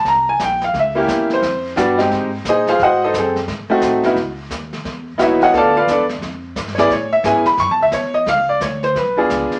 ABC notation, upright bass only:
X:1
M:4/4
L:1/8
Q:"Swing" 1/4=175
K:Ab
V:1 name="Upright bass" clef=bass
C,,2 B,,,2 D,,2 =E,,2 | F,,2 G,,2 A,,2 B,,2 | A,,2 _G,,2 A,, z =A,,2 | [K:Alyd] C,,2 D,,2 E,,2 D,,2 |
=D,,2 E,,2 =F,,2 =G,,2 | A,,2 G,, z (3F,, E,, C,, E,,2 | C,,2 =D,,2 B,,,2 C,, z |]